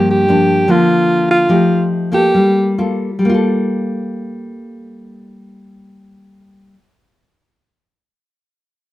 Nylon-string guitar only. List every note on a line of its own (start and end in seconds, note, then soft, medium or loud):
0.00 0.66 G2 medium
0.00 0.25 F3 medium
0.00 0.25 A#3 medium
0.00 0.25 D4 medium
0.28 0.65 F3 medium
0.28 0.65 A#3 medium
0.28 0.66 D4 medium
0.68 1.47 D3 medium
0.68 1.46 F3 medium
0.68 1.46 A#3 medium
0.68 1.46 D4 medium
1.49 2.32 F3 medium
1.49 2.09 A3 soft
1.49 2.09 D#4 medium
1.49 2.09 G4 medium
2.12 2.74 A#3 medium
2.12 2.74 F4 medium
2.12 2.75 A4 medium
2.34 3.18 G3 medium
2.78 3.08 A#3 medium
2.78 3.08 F4 soft
2.78 3.09 A4 medium
3.19 6.73 G3 medium
3.25 6.79 A#3 medium
3.29 6.84 F4 medium
3.34 6.89 A4 medium